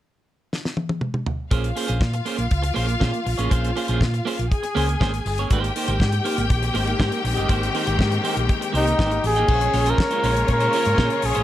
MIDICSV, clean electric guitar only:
0, 0, Header, 1, 3, 480
1, 0, Start_track
1, 0, Tempo, 497925
1, 1465, Time_signature, 4, 2, 24, 8
1, 11021, End_track
2, 0, Start_track
2, 0, Title_t, "Clean electric guitar"
2, 0, Program_c, 0, 27
2, 1456, Note_on_c, 0, 58, 67
2, 1459, Note_on_c, 0, 61, 72
2, 1464, Note_on_c, 0, 68, 75
2, 1472, Note_on_c, 0, 72, 66
2, 1641, Note_off_c, 0, 58, 0
2, 1642, Note_off_c, 0, 61, 0
2, 1645, Note_off_c, 0, 68, 0
2, 1649, Note_off_c, 0, 72, 0
2, 1690, Note_on_c, 0, 58, 52
2, 1696, Note_on_c, 0, 61, 56
2, 1699, Note_on_c, 0, 68, 62
2, 1709, Note_on_c, 0, 72, 62
2, 1792, Note_off_c, 0, 72, 0
2, 1801, Note_off_c, 0, 68, 0
2, 1804, Note_off_c, 0, 61, 0
2, 1804, Note_on_c, 0, 72, 49
2, 1808, Note_off_c, 0, 58, 0
2, 1812, Note_on_c, 0, 68, 54
2, 1816, Note_on_c, 0, 61, 47
2, 1820, Note_on_c, 0, 58, 47
2, 1915, Note_off_c, 0, 58, 0
2, 1922, Note_off_c, 0, 68, 0
2, 1923, Note_off_c, 0, 61, 0
2, 1928, Note_off_c, 0, 72, 0
2, 2174, Note_on_c, 0, 58, 75
2, 2179, Note_on_c, 0, 61, 82
2, 2187, Note_on_c, 0, 68, 76
2, 2192, Note_on_c, 0, 72, 79
2, 2281, Note_off_c, 0, 72, 0
2, 2287, Note_off_c, 0, 68, 0
2, 2297, Note_off_c, 0, 61, 0
2, 2360, Note_off_c, 0, 58, 0
2, 2642, Note_on_c, 0, 58, 79
2, 2652, Note_on_c, 0, 61, 74
2, 2658, Note_on_c, 0, 68, 85
2, 2661, Note_on_c, 0, 72, 93
2, 2759, Note_off_c, 0, 72, 0
2, 2769, Note_off_c, 0, 68, 0
2, 2772, Note_off_c, 0, 61, 0
2, 2834, Note_off_c, 0, 58, 0
2, 2890, Note_on_c, 0, 58, 75
2, 2897, Note_on_c, 0, 61, 83
2, 2901, Note_on_c, 0, 68, 85
2, 2909, Note_on_c, 0, 72, 79
2, 2996, Note_off_c, 0, 72, 0
2, 3005, Note_off_c, 0, 68, 0
2, 3013, Note_off_c, 0, 61, 0
2, 3078, Note_off_c, 0, 58, 0
2, 3255, Note_on_c, 0, 73, 50
2, 3260, Note_on_c, 0, 68, 47
2, 3267, Note_on_c, 0, 61, 53
2, 3269, Note_on_c, 0, 58, 44
2, 3362, Note_off_c, 0, 58, 0
2, 3369, Note_off_c, 0, 61, 0
2, 3374, Note_on_c, 0, 58, 57
2, 3379, Note_off_c, 0, 68, 0
2, 3381, Note_on_c, 0, 61, 61
2, 3391, Note_off_c, 0, 73, 0
2, 3391, Note_on_c, 0, 68, 58
2, 3395, Note_on_c, 0, 72, 77
2, 3560, Note_off_c, 0, 58, 0
2, 3563, Note_off_c, 0, 61, 0
2, 3569, Note_off_c, 0, 68, 0
2, 3570, Note_off_c, 0, 72, 0
2, 3621, Note_on_c, 0, 58, 59
2, 3629, Note_on_c, 0, 61, 63
2, 3633, Note_on_c, 0, 68, 59
2, 3639, Note_on_c, 0, 72, 63
2, 3731, Note_off_c, 0, 72, 0
2, 3740, Note_off_c, 0, 68, 0
2, 3742, Note_on_c, 0, 72, 57
2, 3745, Note_off_c, 0, 61, 0
2, 3750, Note_off_c, 0, 58, 0
2, 3752, Note_on_c, 0, 68, 58
2, 3756, Note_on_c, 0, 61, 58
2, 3762, Note_on_c, 0, 58, 48
2, 3852, Note_off_c, 0, 58, 0
2, 3856, Note_off_c, 0, 61, 0
2, 3861, Note_off_c, 0, 68, 0
2, 3861, Note_off_c, 0, 72, 0
2, 4100, Note_on_c, 0, 58, 75
2, 4110, Note_on_c, 0, 61, 69
2, 4117, Note_on_c, 0, 68, 72
2, 4121, Note_on_c, 0, 72, 81
2, 4216, Note_off_c, 0, 72, 0
2, 4221, Note_off_c, 0, 68, 0
2, 4227, Note_off_c, 0, 61, 0
2, 4283, Note_off_c, 0, 58, 0
2, 4578, Note_on_c, 0, 58, 76
2, 4584, Note_on_c, 0, 61, 77
2, 4591, Note_on_c, 0, 68, 89
2, 4599, Note_on_c, 0, 72, 86
2, 4692, Note_off_c, 0, 72, 0
2, 4704, Note_off_c, 0, 68, 0
2, 4710, Note_off_c, 0, 61, 0
2, 4762, Note_off_c, 0, 58, 0
2, 4823, Note_on_c, 0, 58, 78
2, 4830, Note_on_c, 0, 61, 81
2, 4834, Note_on_c, 0, 68, 83
2, 4843, Note_on_c, 0, 72, 100
2, 4934, Note_off_c, 0, 72, 0
2, 4942, Note_off_c, 0, 68, 0
2, 4945, Note_off_c, 0, 61, 0
2, 5005, Note_off_c, 0, 58, 0
2, 5198, Note_on_c, 0, 73, 53
2, 5206, Note_on_c, 0, 68, 50
2, 5210, Note_on_c, 0, 58, 46
2, 5212, Note_on_c, 0, 61, 52
2, 5302, Note_off_c, 0, 58, 0
2, 5313, Note_on_c, 0, 58, 60
2, 5317, Note_off_c, 0, 61, 0
2, 5320, Note_off_c, 0, 68, 0
2, 5321, Note_on_c, 0, 63, 69
2, 5324, Note_on_c, 0, 67, 80
2, 5326, Note_off_c, 0, 73, 0
2, 5330, Note_on_c, 0, 72, 82
2, 5503, Note_off_c, 0, 58, 0
2, 5507, Note_off_c, 0, 63, 0
2, 5509, Note_off_c, 0, 67, 0
2, 5511, Note_off_c, 0, 72, 0
2, 5549, Note_on_c, 0, 58, 59
2, 5556, Note_on_c, 0, 63, 64
2, 5564, Note_on_c, 0, 67, 59
2, 5567, Note_on_c, 0, 72, 72
2, 5655, Note_off_c, 0, 72, 0
2, 5661, Note_off_c, 0, 67, 0
2, 5666, Note_on_c, 0, 72, 60
2, 5668, Note_off_c, 0, 63, 0
2, 5672, Note_off_c, 0, 58, 0
2, 5673, Note_on_c, 0, 67, 55
2, 5679, Note_on_c, 0, 63, 56
2, 5683, Note_on_c, 0, 58, 49
2, 5774, Note_off_c, 0, 58, 0
2, 5782, Note_off_c, 0, 63, 0
2, 5786, Note_off_c, 0, 67, 0
2, 5789, Note_off_c, 0, 72, 0
2, 6021, Note_on_c, 0, 58, 78
2, 6028, Note_on_c, 0, 63, 79
2, 6030, Note_on_c, 0, 67, 73
2, 6037, Note_on_c, 0, 72, 76
2, 6128, Note_off_c, 0, 72, 0
2, 6134, Note_off_c, 0, 67, 0
2, 6138, Note_off_c, 0, 63, 0
2, 6204, Note_off_c, 0, 58, 0
2, 6497, Note_on_c, 0, 58, 75
2, 6509, Note_on_c, 0, 63, 84
2, 6510, Note_on_c, 0, 67, 80
2, 6516, Note_on_c, 0, 72, 86
2, 6611, Note_off_c, 0, 72, 0
2, 6619, Note_off_c, 0, 67, 0
2, 6626, Note_off_c, 0, 63, 0
2, 6682, Note_off_c, 0, 58, 0
2, 6740, Note_on_c, 0, 58, 85
2, 6746, Note_on_c, 0, 63, 85
2, 6750, Note_on_c, 0, 67, 89
2, 6756, Note_on_c, 0, 72, 89
2, 6847, Note_off_c, 0, 72, 0
2, 6858, Note_off_c, 0, 67, 0
2, 6865, Note_off_c, 0, 63, 0
2, 6923, Note_off_c, 0, 58, 0
2, 7101, Note_on_c, 0, 75, 56
2, 7107, Note_on_c, 0, 67, 49
2, 7112, Note_on_c, 0, 63, 46
2, 7115, Note_on_c, 0, 58, 41
2, 7204, Note_off_c, 0, 58, 0
2, 7211, Note_off_c, 0, 63, 0
2, 7216, Note_off_c, 0, 67, 0
2, 7216, Note_on_c, 0, 58, 74
2, 7223, Note_on_c, 0, 63, 61
2, 7227, Note_off_c, 0, 75, 0
2, 7228, Note_on_c, 0, 67, 70
2, 7231, Note_on_c, 0, 72, 86
2, 7401, Note_off_c, 0, 58, 0
2, 7405, Note_off_c, 0, 63, 0
2, 7407, Note_off_c, 0, 67, 0
2, 7409, Note_off_c, 0, 72, 0
2, 7463, Note_on_c, 0, 58, 62
2, 7470, Note_on_c, 0, 63, 70
2, 7473, Note_on_c, 0, 67, 65
2, 7479, Note_on_c, 0, 72, 63
2, 7565, Note_off_c, 0, 72, 0
2, 7575, Note_off_c, 0, 67, 0
2, 7577, Note_off_c, 0, 63, 0
2, 7577, Note_on_c, 0, 72, 64
2, 7586, Note_on_c, 0, 67, 58
2, 7587, Note_off_c, 0, 58, 0
2, 7589, Note_on_c, 0, 63, 56
2, 7598, Note_on_c, 0, 58, 57
2, 7686, Note_off_c, 0, 58, 0
2, 7688, Note_off_c, 0, 63, 0
2, 7694, Note_off_c, 0, 67, 0
2, 7696, Note_off_c, 0, 72, 0
2, 7937, Note_on_c, 0, 58, 67
2, 7943, Note_on_c, 0, 63, 82
2, 7950, Note_on_c, 0, 67, 83
2, 7954, Note_on_c, 0, 72, 82
2, 8049, Note_off_c, 0, 72, 0
2, 8060, Note_off_c, 0, 67, 0
2, 8066, Note_off_c, 0, 63, 0
2, 8122, Note_off_c, 0, 58, 0
2, 8412, Note_on_c, 0, 58, 92
2, 8416, Note_on_c, 0, 63, 95
2, 8425, Note_on_c, 0, 67, 97
2, 8426, Note_on_c, 0, 72, 110
2, 8530, Note_off_c, 0, 72, 0
2, 8536, Note_off_c, 0, 67, 0
2, 8540, Note_off_c, 0, 63, 0
2, 8599, Note_off_c, 0, 58, 0
2, 8662, Note_on_c, 0, 58, 88
2, 8668, Note_on_c, 0, 63, 98
2, 8677, Note_on_c, 0, 67, 87
2, 8681, Note_on_c, 0, 72, 102
2, 8778, Note_off_c, 0, 72, 0
2, 8786, Note_off_c, 0, 67, 0
2, 8791, Note_off_c, 0, 63, 0
2, 8844, Note_off_c, 0, 58, 0
2, 9026, Note_on_c, 0, 75, 56
2, 9034, Note_on_c, 0, 67, 54
2, 9043, Note_on_c, 0, 63, 50
2, 9046, Note_on_c, 0, 58, 46
2, 9141, Note_off_c, 0, 58, 0
2, 9145, Note_on_c, 0, 56, 76
2, 9147, Note_off_c, 0, 63, 0
2, 9150, Note_on_c, 0, 61, 73
2, 9151, Note_off_c, 0, 67, 0
2, 9155, Note_on_c, 0, 65, 71
2, 9156, Note_off_c, 0, 75, 0
2, 9160, Note_on_c, 0, 72, 78
2, 9255, Note_off_c, 0, 72, 0
2, 9262, Note_off_c, 0, 65, 0
2, 9271, Note_off_c, 0, 61, 0
2, 9326, Note_off_c, 0, 56, 0
2, 9387, Note_on_c, 0, 56, 59
2, 9388, Note_on_c, 0, 61, 64
2, 9394, Note_on_c, 0, 65, 60
2, 9404, Note_on_c, 0, 72, 66
2, 9501, Note_off_c, 0, 72, 0
2, 9504, Note_off_c, 0, 65, 0
2, 9512, Note_on_c, 0, 72, 59
2, 9513, Note_off_c, 0, 61, 0
2, 9515, Note_off_c, 0, 56, 0
2, 9515, Note_on_c, 0, 65, 53
2, 9525, Note_on_c, 0, 61, 43
2, 9527, Note_on_c, 0, 56, 51
2, 9613, Note_off_c, 0, 56, 0
2, 9618, Note_off_c, 0, 61, 0
2, 9624, Note_off_c, 0, 65, 0
2, 9626, Note_off_c, 0, 72, 0
2, 9749, Note_on_c, 0, 72, 59
2, 9757, Note_on_c, 0, 65, 60
2, 9762, Note_on_c, 0, 61, 54
2, 9767, Note_on_c, 0, 56, 49
2, 9853, Note_off_c, 0, 56, 0
2, 9860, Note_off_c, 0, 61, 0
2, 9865, Note_on_c, 0, 56, 72
2, 9868, Note_off_c, 0, 65, 0
2, 9872, Note_on_c, 0, 61, 77
2, 9873, Note_off_c, 0, 72, 0
2, 9879, Note_on_c, 0, 65, 78
2, 9885, Note_on_c, 0, 72, 83
2, 9986, Note_off_c, 0, 72, 0
2, 9994, Note_off_c, 0, 65, 0
2, 10000, Note_off_c, 0, 61, 0
2, 10045, Note_off_c, 0, 56, 0
2, 10225, Note_on_c, 0, 72, 70
2, 10232, Note_on_c, 0, 65, 65
2, 10241, Note_on_c, 0, 61, 67
2, 10243, Note_on_c, 0, 56, 57
2, 10340, Note_off_c, 0, 56, 0
2, 10348, Note_off_c, 0, 61, 0
2, 10352, Note_on_c, 0, 56, 67
2, 10356, Note_off_c, 0, 65, 0
2, 10360, Note_on_c, 0, 61, 73
2, 10364, Note_off_c, 0, 72, 0
2, 10367, Note_on_c, 0, 65, 84
2, 10376, Note_on_c, 0, 72, 71
2, 10463, Note_off_c, 0, 72, 0
2, 10470, Note_off_c, 0, 65, 0
2, 10474, Note_off_c, 0, 61, 0
2, 10489, Note_off_c, 0, 56, 0
2, 10580, Note_on_c, 0, 56, 69
2, 10586, Note_on_c, 0, 61, 81
2, 10595, Note_on_c, 0, 65, 80
2, 10602, Note_on_c, 0, 72, 92
2, 10690, Note_off_c, 0, 72, 0
2, 10697, Note_off_c, 0, 65, 0
2, 10702, Note_off_c, 0, 61, 0
2, 10763, Note_off_c, 0, 56, 0
2, 10944, Note_on_c, 0, 72, 62
2, 10947, Note_on_c, 0, 65, 49
2, 10956, Note_on_c, 0, 61, 51
2, 10958, Note_on_c, 0, 56, 40
2, 11021, Note_off_c, 0, 56, 0
2, 11021, Note_off_c, 0, 61, 0
2, 11021, Note_off_c, 0, 65, 0
2, 11021, Note_off_c, 0, 72, 0
2, 11021, End_track
3, 0, Start_track
3, 0, Title_t, "Muted clean electric guitar strokes"
3, 1927, Note_on_c, 9, 29, 41
3, 2023, Note_off_c, 9, 29, 0
3, 2060, Note_on_c, 9, 29, 34
3, 2156, Note_off_c, 9, 29, 0
3, 2292, Note_on_c, 9, 29, 36
3, 2389, Note_off_c, 9, 29, 0
3, 2530, Note_on_c, 9, 29, 39
3, 2626, Note_off_c, 9, 29, 0
3, 2771, Note_on_c, 9, 29, 43
3, 2867, Note_off_c, 9, 29, 0
3, 3008, Note_on_c, 9, 29, 40
3, 3104, Note_off_c, 9, 29, 0
3, 3137, Note_on_c, 9, 29, 38
3, 3234, Note_off_c, 9, 29, 0
3, 3864, Note_on_c, 9, 29, 41
3, 3960, Note_off_c, 9, 29, 0
3, 3990, Note_on_c, 9, 29, 41
3, 4086, Note_off_c, 9, 29, 0
3, 4227, Note_on_c, 9, 29, 36
3, 4324, Note_off_c, 9, 29, 0
3, 4463, Note_on_c, 9, 29, 43
3, 4559, Note_off_c, 9, 29, 0
3, 4703, Note_on_c, 9, 29, 49
3, 4799, Note_off_c, 9, 29, 0
3, 4945, Note_on_c, 9, 29, 44
3, 5042, Note_off_c, 9, 29, 0
3, 5073, Note_on_c, 9, 29, 37
3, 5170, Note_off_c, 9, 29, 0
3, 5786, Note_on_c, 9, 29, 40
3, 5882, Note_off_c, 9, 29, 0
3, 5902, Note_on_c, 9, 29, 34
3, 5999, Note_off_c, 9, 29, 0
3, 6140, Note_on_c, 9, 29, 54
3, 6236, Note_off_c, 9, 29, 0
3, 6385, Note_on_c, 9, 29, 36
3, 6482, Note_off_c, 9, 29, 0
3, 6623, Note_on_c, 9, 29, 55
3, 6719, Note_off_c, 9, 29, 0
3, 6858, Note_on_c, 9, 29, 40
3, 6955, Note_off_c, 9, 29, 0
3, 6983, Note_on_c, 9, 29, 38
3, 7079, Note_off_c, 9, 29, 0
3, 7698, Note_on_c, 9, 29, 41
3, 7794, Note_off_c, 9, 29, 0
3, 7820, Note_on_c, 9, 29, 43
3, 7917, Note_off_c, 9, 29, 0
3, 8060, Note_on_c, 9, 29, 39
3, 8157, Note_off_c, 9, 29, 0
3, 8303, Note_on_c, 9, 29, 39
3, 8399, Note_off_c, 9, 29, 0
3, 8541, Note_on_c, 9, 29, 45
3, 8638, Note_off_c, 9, 29, 0
3, 8790, Note_on_c, 9, 29, 45
3, 8886, Note_off_c, 9, 29, 0
3, 8914, Note_on_c, 9, 29, 33
3, 9010, Note_off_c, 9, 29, 0
3, 9266, Note_on_c, 9, 29, 52
3, 9363, Note_off_c, 9, 29, 0
3, 9625, Note_on_c, 9, 29, 43
3, 9721, Note_off_c, 9, 29, 0
3, 9998, Note_on_c, 9, 29, 44
3, 10094, Note_off_c, 9, 29, 0
3, 10118, Note_on_c, 9, 29, 42
3, 10215, Note_off_c, 9, 29, 0
3, 10474, Note_on_c, 9, 29, 43
3, 10571, Note_off_c, 9, 29, 0
3, 10702, Note_on_c, 9, 29, 51
3, 10798, Note_off_c, 9, 29, 0
3, 10824, Note_on_c, 9, 29, 29
3, 10920, Note_off_c, 9, 29, 0
3, 11021, End_track
0, 0, End_of_file